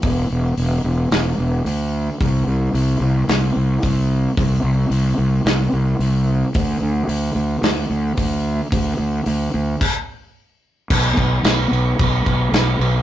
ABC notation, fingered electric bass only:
X:1
M:4/4
L:1/8
Q:1/4=110
K:Dmix
V:1 name="Fingered electric bass" clef=bass
E,,, E,,, E,,, E,,, E,,, E,,, D,,2 | C,, C,, C,, C,, C,, C,, C,,2 | C,, C,, C,, C,, C,, C,, C,,2 | D,, D,, D,, D,, D,, D,, D,,2 |
D,, D,, D,, D,, z4 | B,,, B,,, B,,, B,,, B,,, B,,, B,,, B,,, |]